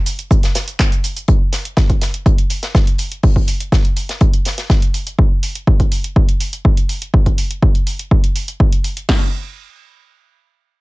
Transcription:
0.06 closed hi-hat medium
0.06 open hi-hat loud
0.06 cabasa medium
0.19 closed hi-hat medium
0.19 cabasa soft
0.31 kick loud
0.31 closed hi-hat medium
0.31 cabasa soft
0.43 snare medium
0.43 closed hi-hat soft
0.43 cabasa soft
0.55 snare loud
0.55 closed hi-hat medium
0.55 open hi-hat loud
0.55 cabasa medium
0.68 closed hi-hat medium
0.68 cabasa soft
0.80 kick loud
0.80 snare loud
0.80 clap loud
0.80 closed hi-hat medium
0.80 cabasa soft
0.92 closed hi-hat soft
0.92 cabasa soft
1.04 closed hi-hat medium
1.04 open hi-hat loud
1.04 cabasa medium
1.17 closed hi-hat medium
1.17 closed hi-hat soft
1.17 cabasa soft
1.28 kick loud
1.28 closed hi-hat medium
1.52 snare medium
1.52 closed hi-hat medium
1.52 open hi-hat loud
1.65 closed hi-hat medium
1.77 kick loud
1.77 snare loud
1.77 closed hi-hat medium
1.90 kick medium
1.90 closed hi-hat soft
2.01 snare medium
2.01 closed hi-hat medium
2.01 open hi-hat loud
2.14 closed hi-hat medium
2.26 kick loud
2.26 closed hi-hat medium
2.38 closed hi-hat medium
2.50 closed hi-hat medium
2.50 open hi-hat loud
2.63 snare medium
2.63 closed hi-hat medium
2.75 kick loud
2.75 snare loud
2.75 closed hi-hat medium
2.87 closed hi-hat soft
2.98 closed hi-hat medium
2.98 open hi-hat loud
3.12 closed hi-hat medium
3.23 kick loud
3.23 open hi-hat medium
3.36 kick medium
3.47 closed hi-hat medium
3.47 open hi-hat loud
3.60 closed hi-hat medium
3.60 closed hi-hat soft
3.72 kick loud
3.72 snare loud
3.72 closed hi-hat medium
3.85 closed hi-hat soft
3.96 closed hi-hat medium
3.96 open hi-hat loud
4.09 snare soft
4.09 closed hi-hat medium
4.21 kick loud
4.21 closed hi-hat medium
4.34 closed hi-hat medium
4.45 snare medium
4.45 closed hi-hat medium
4.45 open hi-hat loud
4.58 snare soft
4.58 closed hi-hat medium
4.70 kick loud
4.70 snare loud
4.70 closed hi-hat medium
4.82 closed hi-hat soft
4.94 closed hi-hat medium
4.94 open hi-hat loud
5.07 closed hi-hat medium
5.07 closed hi-hat soft
5.19 kick loud
5.43 open hi-hat loud
5.55 closed hi-hat medium
5.67 kick loud
5.80 kick medium
5.80 closed hi-hat soft
5.92 open hi-hat loud
6.04 closed hi-hat medium
6.16 kick loud
6.29 closed hi-hat medium
6.40 open hi-hat loud
6.53 closed hi-hat medium
6.65 kick loud
6.77 closed hi-hat medium
6.89 open hi-hat loud
7.02 closed hi-hat medium
7.14 kick loud
7.26 kick medium
7.26 closed hi-hat soft
7.38 open hi-hat loud
7.51 closed hi-hat medium
7.62 kick loud
7.75 closed hi-hat soft
7.87 open hi-hat loud
7.99 closed hi-hat medium
8.11 kick loud
8.24 closed hi-hat medium
8.36 open hi-hat loud
8.48 closed hi-hat medium
8.60 kick loud
8.72 closed hi-hat medium
8.84 open hi-hat loud
8.97 closed hi-hat medium
9.09 kick loud
9.09 snare loud
9.09 crash medium

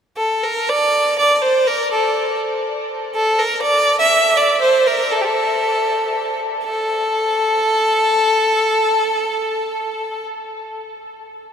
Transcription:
0.17 0.45 A4 medium
0.44 0.71 A#4 medium
0.69 1.18 D5 medium
1.19 1.35 D5 medium
1.35 1.43 D5 medium
1.42 1.69 C5 medium
1.67 1.91 A#4 medium
1.92 2.38 A4 medium
3.15 3.40 A4 medium
3.39 3.62 A#4 medium
3.63 3.98 D5 medium
3.99 4.39 E5 medium
4.37 4.61 D5 medium
4.62 4.88 C5 medium
4.87 5.13 A#4 medium
5.11 5.23 A4 medium
5.22 5.27 G4 medium
5.22 6.37 A4 medium
6.64 10.25 A4 medium

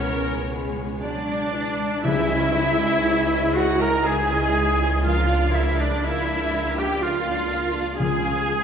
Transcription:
0.00 0.98 C#2 medium
0.00 1.80 C#2 medium
0.00 2.08 B2 medium
0.00 0.97 C#3 medium
0.00 0.75 G#3 medium
0.00 1.02 B3 medium
0.00 3.14 B3 soft
0.00 0.98 C#4 medium
0.00 1.02 C#4 medium
0.00 3.65 E4 soft
0.00 0.25 G#4 medium
0.00 0.47 A#4 medium
0.00 0.51 B4 medium
0.00 0.98 C#5 loud
0.00 0.85 C#6 medium
0.26 3.30 G#4 medium
0.52 1.02 G#3 medium
0.52 2.09 B4 soft
0.76 1.27 G#3 soft
1.01 1.53 F#3 medium
1.01 2.06 D4 medium
1.01 2.00 D4 medium
1.01 2.00 D5 medium
1.01 2.01 D5 medium
1.28 1.78 G#3 soft
1.54 2.04 E3 medium
1.79 2.55 G#3 soft
2.04 7.96 C#2 medium
2.04 3.52 C#3 loud
2.04 5.09 C#3 medium
2.04 5.00 G#3 medium
2.04 2.29 D#4 medium
2.04 5.00 E4 medium
2.04 3.55 E4 loud
2.04 3.56 E4 loud
2.04 2.28 G#4 medium
2.04 2.28 E5 medium
2.04 3.56 E5 medium
2.04 3.58 E5 loud
2.04 tam-tam medium
2.28 4.04 C#4 medium
2.28 2.56 C#4 medium
2.28 2.56 E4 medium
2.28 2.54 D#5 medium
2.55 3.80 G#3 medium
2.55 2.80 D#4 medium
2.55 2.81 G#4 medium
2.55 2.80 E5 medium
2.80 3.06 C#4 medium
2.80 3.06 E4 medium
2.80 3.05 D#5 medium
3.04 3.29 D#4 medium
3.04 3.29 G#4 medium
3.04 3.56 C#5 medium
3.04 3.28 E5 medium
3.30 3.56 C#4 medium
3.30 3.56 E4 medium
3.30 5.09 G#4 medium
3.30 3.55 D#5 medium
3.53 3.81 D#4 medium
3.53 3.83 F#4 medium
3.53 3.81 F#4 medium
3.53 3.81 G#4 medium
3.53 5.09 C#5 medium
3.53 3.79 E5 medium
3.53 3.83 F#5 medium
3.53 3.80 F#5 medium
3.80 4.30 G#3 medium
3.80 4.06 C#4 medium
3.80 4.06 E4 medium
3.80 4.05 A#4 medium
3.80 4.07 A#4 medium
3.80 4.05 D#5 medium
3.80 4.05 A#5 medium
3.80 4.08 A#5 medium
4.05 4.55 C#4 medium
4.05 4.28 D#4 medium
4.05 5.04 G#4 loud
4.05 4.28 G#4 medium
4.05 5.04 G#4 medium
4.05 4.29 E5 medium
4.05 5.05 G#5 medium
4.29 4.79 G#3 medium
4.29 4.55 C#4 medium
4.29 4.54 E4 medium
4.29 4.55 D#5 medium
4.55 5.09 C#4 medium
4.55 4.80 D#4 medium
4.55 4.80 G#4 medium
4.55 4.80 E5 medium
4.79 5.09 G#3 medium
4.79 5.05 C#4 medium
4.79 5.05 E4 medium
4.79 5.04 D#5 medium
5.03 8.04 F3 medium
5.03 7.95 A#3 medium
5.03 7.95 D4 medium
5.03 5.53 F4 medium
5.03 5.58 F4 medium
5.03 5.26 F4 medium
5.03 5.28 A#4 medium
5.03 5.27 F5 medium
5.03 5.54 F5 medium
5.03 5.58 F5 medium
5.28 5.53 D4 medium
5.28 5.52 F4 medium
5.28 5.55 D5 medium
5.53 6.77 A#3 medium
5.53 5.79 E4 medium
5.53 5.82 E4 medium
5.53 5.76 F4 medium
5.53 5.79 A#4 medium
5.53 5.79 E5 medium
5.53 5.82 E5 medium
5.53 5.79 F5 medium
5.77 6.03 D4 medium
5.77 6.04 D4 medium
5.77 6.07 D4 medium
5.77 6.03 F4 medium
5.77 6.04 D5 medium
5.77 6.07 D5 medium
5.82 6.05 D5 medium
6.03 6.77 E4 loud
6.03 6.81 E4 medium
6.03 6.26 F4 medium
6.03 6.26 A#4 medium
6.03 6.77 E5 medium
6.03 6.80 E5 medium
6.03 6.27 F5 medium
6.03 8.04 D6 medium
6.27 6.52 D4 medium
6.27 6.51 F4 medium
6.27 8.04 A#4 medium
6.27 6.54 D5 medium
6.52 6.76 F4 medium
6.52 6.77 A#4 medium
6.52 6.78 F5 medium
6.52 8.04 F5 medium
6.77 7.26 A#3 medium
6.77 7.02 D4 medium
6.77 7.00 F4 medium
6.77 7.01 G4 medium
6.77 7.04 G4 medium
6.77 7.02 D5 medium
6.77 7.02 G5 medium
6.77 7.04 G5 medium
7.01 7.50 C#4 medium
7.01 7.99 F4 medium
7.01 7.24 F4 medium
7.01 7.72 F4 medium
7.01 7.24 A#4 medium
7.01 7.24 F5 medium
7.01 7.72 F5 medium
7.01 8.00 F5 medium
7.26 7.75 A#3 medium
7.26 7.50 D4 medium
7.26 7.49 F4 medium
7.26 7.51 D5 medium
7.51 8.23 C#4 medium
7.51 7.72 F4 medium
7.51 7.75 A#4 medium
7.51 7.76 F5 medium
7.73 8.04 A#3 soft
7.73 7.99 D4 medium
7.73 7.98 F4 medium
7.78 8.01 D5 medium
7.99 8.64 C#2 medium
7.99 8.64 C#3 medium
7.99 8.64 G#3 medium
7.99 8.22 F4 medium
7.99 8.64 F4 medium
7.99 8.22 G#4 medium
7.99 8.64 G#4 loud
7.99 8.64 G#4 medium
7.99 8.64 G#5 medium
7.99 8.24 G#5 medium
8.23 8.48 C#4 medium
8.23 8.64 C#4 medium
8.23 8.46 F4 medium
8.23 8.50 F5 medium
8.47 8.64 G#3 medium
8.47 8.64 F4 soft
8.47 8.64 G#4 medium
8.47 8.64 G#5 medium

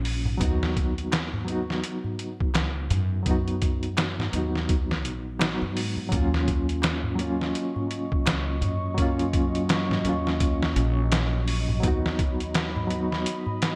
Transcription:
0.00 0.38 A#1 loud
0.00 0.35 F#3 medium
0.00 0.37 A#3 medium
0.00 0.38 C#4 medium
0.00 0.39 F4 medium
0.05 open hi-hat medium
0.25 darbuka dum medium
0.37 1.81 D#2 medium
0.37 1.43 F#3 medium
0.37 1.44 B3 medium
0.37 kick loud
0.37 closed hi-hat medium
0.43 1.45 D#4 medium
0.43 1.46 F#4 loud
0.63 snare soft
0.76 kick medium
0.76 closed hi-hat medium
0.98 closed hi-hat soft
1.12 snare loud
1.12 closed hi-hat medium
1.12 darbuka tek medium
1.33 darbuka dum medium
1.44 3.21 F#3 medium
1.44 3.22 B3 medium
1.44 closed hi-hat medium
1.50 3.24 D#4 medium
1.50 3.25 F#4 medium
1.70 snare soft
1.84 closed hi-hat medium
2.04 darbuka dum medium
2.19 closed hi-hat medium
2.40 kick medium
2.54 2.87 C#2 medium
2.54 snare loud
2.54 closed hi-hat medium
2.54 darbuka tek medium
2.90 4.30 F#2 medium
2.90 closed hi-hat medium
2.90 darbuka dum medium
3.23 4.28 F#3 medium
3.23 4.29 B3 medium
3.23 kick loud
3.23 closed hi-hat medium
3.28 4.31 D#4 medium
3.28 4.32 F#4 medium
3.48 closed hi-hat soft
3.62 kick medium
3.62 closed hi-hat medium
3.83 closed hi-hat soft
3.97 snare loud
3.97 closed hi-hat medium
3.97 darbuka tek medium
4.19 snare soft
4.19 darbuka dum medium
4.30 5.04 D#2 loud
4.30 5.36 F#3 medium
4.30 5.37 B3 medium
4.30 closed hi-hat medium
4.35 5.39 D#4 medium
4.35 5.40 F#4 medium
4.55 snare soft
4.69 kick loud
4.69 closed hi-hat medium
4.91 snare medium
5.04 5.58 A#1 loud
5.04 closed hi-hat medium
5.39 5.52 F#3 medium
5.39 5.52 B3 medium
5.39 5.53 D#4 medium
5.39 5.54 F#4 medium
5.39 snare loud
5.39 closed hi-hat medium
5.39 darbuka tek medium
5.62 5.76 F#2 medium
5.76 6.08 G#2 medium
5.76 open hi-hat medium
5.97 darbuka dum medium
6.09 7.52 D#2 medium
6.09 7.14 F#3 medium
6.09 13.75 F#3 medium
6.09 7.15 A#3 medium
6.09 11.79 D#5 medium
6.09 11.79 C#6 medium
6.09 kick loud
6.09 closed hi-hat medium
6.14 7.17 C#4 medium
6.14 7.18 F4 loud
6.34 snare soft
6.48 kick medium
6.48 closed hi-hat medium
6.69 closed hi-hat soft
6.82 snare loud
6.82 closed hi-hat medium
6.82 darbuka tek medium
7.04 darbuka dum medium
7.15 8.92 F#3 medium
7.15 8.94 A#3 medium
7.15 closed hi-hat medium
7.21 8.95 C#4 medium
7.21 8.96 F4 medium
7.41 snare soft
7.55 closed hi-hat medium
7.76 darbuka dum medium
7.91 closed hi-hat medium
8.12 kick medium
8.26 8.58 C#2 medium
8.26 snare loud
8.26 closed hi-hat medium
8.26 darbuka tek medium
8.61 10.02 F#2 medium
8.61 closed hi-hat medium
8.61 darbuka dum medium
8.94 10.00 F#3 medium
8.94 10.01 A#3 medium
8.94 kick loud
8.94 closed hi-hat medium
8.99 10.02 C#4 medium
8.99 10.04 F4 loud
9.19 closed hi-hat soft
9.33 kick medium
9.33 closed hi-hat medium
9.55 closed hi-hat soft
9.69 snare loud
9.69 closed hi-hat medium
9.69 darbuka tek medium
9.90 snare soft
9.90 darbuka dum medium
10.01 10.73 D#2 medium
10.01 11.78 F#3 medium
10.01 11.79 A#3 medium
10.01 closed hi-hat medium
10.06 11.81 C#4 medium
10.06 11.82 F4 medium
10.27 snare soft
10.40 kick loud
10.40 closed hi-hat medium
10.63 snare medium
10.76 11.80 A#1 loud
10.76 closed hi-hat medium
11.12 snare loud
11.12 closed hi-hat medium
11.12 darbuka tek medium
11.48 open hi-hat medium
11.68 darbuka dum medium
11.80 13.23 D#2 medium
11.80 12.85 F#3 medium
11.80 12.87 B3 medium
11.80 13.75 D#5 medium
11.80 13.75 B5 medium
11.80 kick loud
11.80 closed hi-hat medium
11.85 12.88 D#4 medium
11.85 12.89 F#4 loud
12.06 snare soft
12.19 kick medium
12.19 closed hi-hat medium
12.40 closed hi-hat soft
12.54 snare loud
12.54 closed hi-hat medium
12.54 darbuka tek medium
12.76 darbuka dum medium
12.87 13.75 F#3 medium
12.87 13.75 B3 medium
12.87 closed hi-hat medium
12.92 13.75 D#4 medium
12.92 13.75 F#4 medium
13.12 snare soft
13.26 closed hi-hat medium
13.47 darbuka dum medium
13.62 snare medium
13.62 closed hi-hat medium

